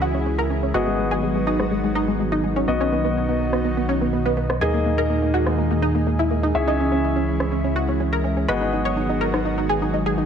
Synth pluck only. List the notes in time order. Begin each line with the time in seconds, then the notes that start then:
0.02 F#4
0.14 C#4
0.26 C#4
0.39 A#4
0.50 C#4
0.63 C#4
0.74 F#4
0.87 G#3
0.99 G#3
1.11 G#4
1.23 G#3
1.35 G#3
1.47 D#4
1.60 G#3
1.71 G#3
1.84 G#3
1.95 D#4
2.08 G#3
2.19 G#3
2.32 D#4
2.44 G#3
2.56 C#4
2.68 B3
2.80 C#4
2.92 B3
3.05 B3
3.29 B3
3.53 B3
3.65 B3
3.77 B3
3.89 C#4
4.01 B3
4.13 B3
4.25 B3
4.37 B3
4.50 B3
4.61 G#4
4.74 A#3
4.86 A#3
4.98 A#4
5.10 A#3
5.22 A#3
5.34 F#4
5.47 A#3
5.58 A#3
5.71 A#3
5.82 D#4
5.95 A#3
6.07 A#3
6.19 E4
6.31 A#3
6.43 D#4
6.55 C#4
6.68 D#4
6.79 C#4
6.92 C#4
7.16 C#4
7.40 C#4
7.52 C#4
7.64 C#4
7.76 F#4
7.88 C#4
8.00 C#4
8.13 A#4
8.24 C#4
8.37 C#4
8.48 B4
8.61 D#4
8.73 D#4
8.85 C#5
8.97 D#4
9.09 D#4
9.21 A#4
9.34 D#4
9.45 D#4
9.58 D#4
9.69 G#4
9.82 D#4
9.94 D#4
10.06 G#4
10.18 D#4